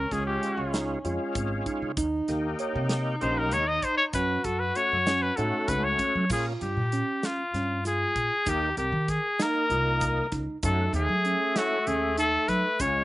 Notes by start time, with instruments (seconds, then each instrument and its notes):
Already playing: alto saxophone C#4, trumpet A#4
0.11 upright bass C#2, tonewheel organ G#3 C#4 F4, tine electric piano G#3, trumpet G#4, kick, snare, closed hi-hat, shaker
0.27 trumpet G4
0.43 closed hi-hat
0.57 upright bass C#2
0.74 tine electric piano D#4, snare, closed hi-hat, shaker
1.04 upright bass F2, tonewheel organ G#3 C#4 F4, tine electric piano F4, closed hi-hat
1.35 upright bass G#1, kick, closed hi-hat, shaker
1.66 tine electric piano D#4, kick, closed hi-hat
1.82 upright bass C#3
1.97 upright bass D#2, tine electric piano D#4, alto saxophone D#4, kick, closed hi-hat, shaker
2.28 upright bass D#2, tonewheel organ A#3 D#4 G4, snare, closed hi-hat, shaker
2.59 tine electric piano C#5, closed hi-hat
2.75 upright bass C3
2.89 snare, closed hi-hat, shaker
3.21 upright bass A#1, tonewheel organ A#3 D#4 G4, tine electric piano C#4, trumpet C5, closed hi-hat
3.38 trumpet A#4
3.52 upright bass D#2, tine electric piano D#4, trumpet C#5, closed hi-hat, shaker
3.68 trumpet D#5
3.82 trumpet C5, kick, closed hi-hat
3.97 trumpet C#5
4.13 upright bass F#2, tine electric piano C#4, alto saxophone F#4, trumpet B4, kick, closed hi-hat, shaker
4.44 upright bass F#2, tine electric piano F#4, trumpet A4, kick, closed hi-hat
4.59 trumpet B4
4.75 tonewheel organ A3 C#4 F#4, trumpet C#5, closed hi-hat, shaker
4.92 upright bass F#2
5.07 tine electric piano C#4, snare, closed hi-hat, shaker
5.22 trumpet B4
5.36 upright bass A2, tonewheel organ A3 C#4 F#4, tine electric piano D#4, trumpet A4, closed hi-hat
5.68 upright bass C#2, trumpet B4, kick, closed hi-hat, shaker
5.84 trumpet C#5
5.99 tine electric piano C#4, kick, closed hi-hat
6.15 upright bass F#3
6.29 upright bass A#2, tonewheel organ A#3 C#4 F4, tine electric piano F4, trumpet G#4, kick, crash, shaker
6.61 upright bass G2, trumpet G4, closed hi-hat
6.77 upright bass A#2
6.92 tine electric piano C#4, closed hi-hat
7.23 trumpet F4, snare, closed hi-hat, shaker
7.54 upright bass G2, tine electric piano C#4, snare, closed hi-hat
7.85 tine electric piano F4, trumpet G#4, snare, closed hi-hat, shaker
8.16 upright bass A#2, kick, closed hi-hat
8.46 upright bass D#2, tonewheel organ A#3 D#4 G4, tine electric piano D#4, trumpet G4, kick, closed hi-hat, shaker
8.77 upright bass C2, trumpet G4, tine electric piano A#4, closed hi-hat
8.92 upright bass D#3
9.08 trumpet G#4, kick, snare, closed hi-hat
9.40 tonewheel organ A#3 D#4 A#4, tine electric piano D#4, trumpet A#4, snare, closed hi-hat, shaker
9.70 upright bass C2, tine electric piano F4, closed hi-hat
10.01 kick, snare, closed hi-hat, shaker
10.32 upright bass C#2, tine electric piano D#4, kick, snare, closed hi-hat
10.63 upright bass F#2, alto saxophone A3, tonewheel organ A3 C#4 F#4, tine electric piano D#4, trumpet A4, kick, closed hi-hat, shaker
10.93 upright bass D#2, trumpet G#4, closed hi-hat
11.09 upright bass F#3
11.25 tine electric piano C#4, closed hi-hat
11.56 tonewheel organ A3 C#4 E4, trumpet F#4, snare, closed hi-hat, shaker
11.87 upright bass D#2, tine electric piano C#4, trumpet G#4, closed hi-hat
12.18 tine electric piano D#4, trumpet A4, closed hi-hat, shaker
12.48 upright bass F#3, trumpet B4, kick, snare, closed hi-hat
12.80 upright bass C#2, alto saxophone G#3, tonewheel organ G#3 C#4 F4, tine electric piano C#4, trumpet C#5, kick, closed hi-hat, shaker